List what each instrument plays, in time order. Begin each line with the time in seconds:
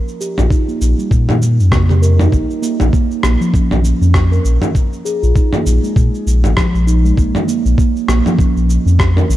0.08 shaker
0.21 steel tongue drum G4, shaker
0.38 sub bass A#1, steel tongue drum F4, mid tom, shaker
0.50 steel tongue drum D#4, kick, shaker
0.68 steel tongue drum A#3, shaker
0.81 sub bass A#1, shaker
0.98 steel tongue drum G3, shaker
1.11 sub bass A#2, kick, shaker
1.29 mid tom, shaker
1.42 shaker
1.59 sub bass F2, shaker
1.72 steel tongue drum A#3, kick, cross-stick, high tom, shaker
1.89 steel tongue drum G4, high tom, shaker
2.02 steel tongue drum A#4, shaker
2.19 steel tongue drum D#4, mid tom, shaker
2.32 sub bass A#1, steel tongue drum A#3, kick, shaker
2.50 shaker
2.62 steel tongue drum A#3, shaker
2.80 sub bass A#1, steel tongue drum A#3, mid tom, shaker
2.92 steel tongue drum A#3, kick, shaker
3.11 shaker
3.23 sub bass A#1, steel tongue drum A#3, cross-stick, shaker
3.41 steel tongue drum F3, shaker
3.53 steel tongue drum C#4, kick, shaker
3.71 sub bass A#1, mid tom, shaker
3.84 shaker
4.01 sub bass F2, steel tongue drum C#4, shaker
4.14 kick, cross-stick, shaker
4.32 steel tongue drum A#4, shaker
4.45 sub bass A#1, shaker
4.62 mid tom, shaker
4.75 kick, shaker
4.93 shaker
5.05 steel tongue drum G#4, shaker
5.23 sub bass A#1, steel tongue drum F4, shaker
5.36 steel tongue drum D#4, kick, shaker
5.53 steel tongue drum A#3, mid tom, shaker
5.66 sub bass A#1, shaker
5.83 steel tongue drum G#3, shaker
5.96 sub bass A#2, kick, shaker
6.14 shaker
6.26 sub bass A#1, shaker
6.44 sub bass G#1, mid tom, shaker
6.57 steel tongue drum F3, kick, cross-stick, shaker
6.74 sub bass A#1, shaker
6.87 steel tongue drum D#4, shaker
7.05 steel tongue drum G#3, shaker
7.17 sub bass A#1, steel tongue drum A#3, kick, shaker
7.35 mid tom, shaker
7.48 steel tongue drum A#3, shaker
7.65 sub bass A#1, steel tongue drum A#3, shaker
7.78 steel tongue drum A#3, kick, shaker
7.96 shaker
8.08 sub bass A#1, steel tongue drum A#3, cross-stick, shaker
8.25 steel tongue drum F3, mid tom, shaker
8.38 steel tongue drum C#4, kick, shaker
8.56 sub bass A#1, shaker
8.70 shaker
8.86 sub bass F2, steel tongue drum C#4, shaker
8.99 kick, cross-stick, shaker
9.16 steel tongue drum A#4, mid tom, shaker
9.29 sub bass A#1, shaker